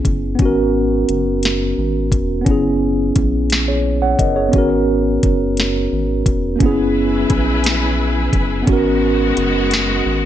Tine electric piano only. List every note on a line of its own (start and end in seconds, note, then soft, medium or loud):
0.00 0.33 B3 medium
0.00 0.35 C#4 medium
0.00 0.36 E4 medium
0.00 0.38 G#4 medium
0.35 2.40 B3 medium
0.35 2.42 C#4 medium
0.42 2.44 F#4 medium
0.42 2.45 A#4 medium
2.41 4.47 B3 medium
2.41 4.48 C#4 medium
2.48 4.50 E4 medium
2.48 3.50 G#4 medium
3.68 4.01 G#4 medium
3.68 4.00 C#5 medium
4.02 4.18 C#5 medium
4.02 4.18 F#5 medium
4.19 4.36 A#4 soft
4.19 4.35 D#5 medium
4.36 4.69 G#4 medium
4.36 4.69 C#5 medium
4.49 6.54 B3 medium
4.49 6.55 C#4 medium
4.55 6.57 F#4 medium
4.55 6.59 A#4 medium
6.56 6.64 A#3 medium
6.56 8.62 C#4 medium
6.62 8.61 B3 medium
6.62 8.64 E4 medium
6.62 8.66 G#4 medium
8.63 10.25 B3 medium
8.63 10.25 C#4 medium
8.69 10.25 F#4 medium
8.69 10.25 A#4 medium